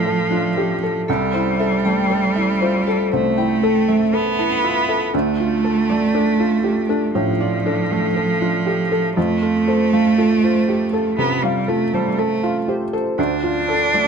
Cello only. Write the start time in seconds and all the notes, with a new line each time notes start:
Already playing: F3
1.09 G3
3.12 A3
4.15 B3
5.14 A3
7.13 F3
9.16 A3
11.18 B3
11.43 G3
11.69 A3
11.94 G3
12.19 A3
13.18 D4